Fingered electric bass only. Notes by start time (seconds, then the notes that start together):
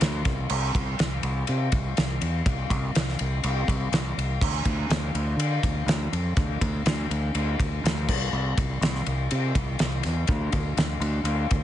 0.01 D2
0.26 C2
0.50 C2
0.75 C2
1.00 C2
1.23 C2
1.49 C3
1.73 C2
1.98 C2
2.22 E2
2.46 C2
2.70 C2
2.96 C2
3.20 C2
3.44 C2
3.68 C2
3.92 C2
4.17 C2
4.42 D2
4.65 D2
4.89 D2
5.14 D2
5.37 D3
5.63 D2
5.86 D2
6.12 F2
6.37 D2
6.61 D2
6.86 D2
7.10 D2
7.35 D2
7.60 D2
7.84 D2
8.09 C2
8.33 C2
8.58 C2
8.81 C2
9.07 C2
9.32 C3
9.55 C2
9.81 C2
10.05 E2
10.29 D2
10.54 D2
10.77 D2
11.00 D2
11.24 D2
11.51 D2